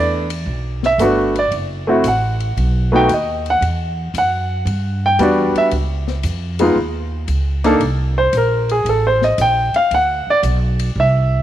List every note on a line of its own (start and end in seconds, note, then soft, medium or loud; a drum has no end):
0.00 0.46 E2 medium
0.00 0.25 A3 medium
0.00 0.25 B3 medium
0.00 0.25 D4 medium
0.00 0.26 E4 medium
0.00 0.81 D5 medium
0.30 ride medium
0.46 0.98 B1 medium
0.83 1.01 E5 medium
0.83 snare medium
0.98 1.50 G1 medium
0.98 1.33 A3 medium
0.98 1.33 B3 medium
0.98 1.33 D4 soft
0.98 1.33 F#4 medium
0.98 hi-hat pedal medium
0.98 ride medium
1.04 1.37 B4 soft
1.35 1.53 D5 medium
1.35 ride soft
1.51 2.03 F#1 medium
1.51 ride medium
1.87 2.03 A3 medium
1.87 2.03 C4 medium
1.87 2.04 E4 medium
1.87 2.04 F#4 medium
2.04 2.55 A1 medium
2.04 2.91 F#5 medium
2.04 hi-hat pedal medium
2.04 ride medium
2.40 ride soft
2.57 3.08 B1 medium
2.57 ride medium
2.92 3.07 A3 medium
2.92 3.08 B3 medium
2.92 3.08 D#4 medium
2.92 3.08 F#4 medium
2.92 3.10 G5 medium
3.09 3.60 D#2 medium
3.09 hi-hat pedal medium
3.09 ride medium
3.14 3.47 D#5 medium
3.46 ride soft
3.50 3.64 F#5 medium
3.61 4.12 E2 medium
3.61 ride medium
4.14 4.65 F#2 medium
4.14 hi-hat pedal medium
4.14 ride medium
4.18 5.01 F#5 medium
4.65 5.17 G2 medium
4.65 ride medium
5.06 5.20 G5 medium
5.19 5.53 E2 medium
5.19 5.72 G3 medium
5.19 5.72 B3 medium
5.19 5.72 D4 medium
5.19 5.73 F#4 medium
5.19 hi-hat pedal soft
5.19 ride medium
5.23 5.56 D5 medium
5.55 5.67 E5 medium
5.55 muted upright bass stroke soft
5.55 ride soft
5.71 6.22 C#2 medium
5.71 ride medium
6.07 snare soft
6.23 6.75 F2 medium
6.23 hi-hat pedal medium
6.23 ride medium
6.59 6.75 G#3 medium
6.59 6.75 B3 medium
6.59 6.75 D#4 medium
6.59 6.75 F4 medium
6.59 ride medium
6.76 7.27 D#2 medium
7.28 7.79 C#2 medium
7.28 hi-hat pedal soft
7.28 ride medium
7.64 7.79 A#3 medium
7.64 7.79 D4 medium
7.64 7.80 D#4 medium
7.64 7.80 A4 medium
7.64 snare soft
7.64 ride soft
7.80 8.31 C2 medium
7.80 ride medium
8.18 8.33 C5 medium
8.33 8.84 A#1 medium
8.33 hi-hat pedal medium
8.33 ride medium
8.37 8.71 A#4 medium
8.69 8.87 G#4 medium
8.69 ride soft
8.85 9.36 A1 medium
8.85 ride medium
8.89 9.05 A4 medium
9.07 9.22 C5 medium
9.22 9.40 D#5 medium
9.22 snare medium
9.38 9.72 A#1 medium
9.38 9.75 G5 medium
9.38 hi-hat pedal medium
9.38 ride medium
9.74 9.91 F5 medium
9.74 muted upright bass stroke soft
9.74 ride soft
9.91 10.25 D2 medium
9.91 10.28 F#5 medium
9.91 ride medium
10.27 10.39 D5 medium
10.27 muted upright bass stroke soft
10.43 10.94 B1 medium
10.43 hi-hat pedal medium
10.43 ride medium
10.79 ride medium
10.96 11.43 C2 medium
11.00 11.43 E5 medium